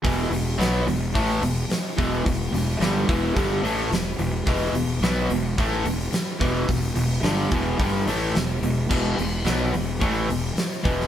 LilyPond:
<<
  \new Staff \with { instrumentName = "Overdriven electric guitar" } { \clef bass \time 4/4 \key e \minor \tempo 4 = 108 <e, b, e>8 <e, b,>8 <b, fis b>8 <e, b,>8 <a, e a>8 <e, b,>8 r8 <e, b, e>8 | <e, b,>8 <e, b,>8 <g, d g>8 <e, b, e>8 <g, d g>8 <a, e a>8 <e, b,>8 <e, b,>8 | <e, b, e>8 <e, b,>8 <b, fis b>8 <e, b,>8 <a, e a>8 <e, b,>8 r8 <e, b, e>8 | <e, b,>8 <e, b,>8 <g, d g>8 <e, b, e>8 <g, d g>8 <a, e a>8 <e, b,>8 <e, b,>8 |
<e, b, e>8 <e, b,>8 <b, fis b>8 <e, b,>8 <a, e a>8 <e, b,>8 r8 <e, b, e>8 | }
  \new Staff \with { instrumentName = "Fingered electric bass" } { \clef bass \time 4/4 \key e \minor e,,8 e,,8 b,,8 e,,8 a,,8 e,,8 r8 e,,8 | e,,8 e,,8 g,,8 e,,8 g,,8 a,,8 e,,8 e,,8 | e,,8 e,,8 b,,8 e,,8 a,,8 e,,8 r8 e,,8 | e,,8 e,,8 g,,8 e,,8 g,,8 a,,8 e,,8 e,,8 |
e,,8 e,,8 b,,8 e,,8 a,,8 e,,8 r8 e,,8 | }
  \new DrumStaff \with { instrumentName = "Drums" } \drummode { \time 4/4 <hho bd>8 hho8 <hho sn>8 hho8 <hho bd>8 hho8 <hho sn>8 <hho bd>8 | <hho bd>8 <hho sn>8 <hho sn>8 <hho bd>8 <hho bd>8 hho8 <hho sn>8 hho8 | <hho bd>8 hho8 <hho sn>8 hho8 <hho bd>8 hho8 <hho sn>8 <hho bd>8 | <hho bd>8 hho8 <hho sn>8 <hho bd>8 <hho bd>8 hho8 <hho sn>8 hho8 |
<cymc bd>8 hho8 <hho sn>8 hho8 <hho bd>8 hho8 <hho sn>8 <hho bd>16 sn16 | }
>>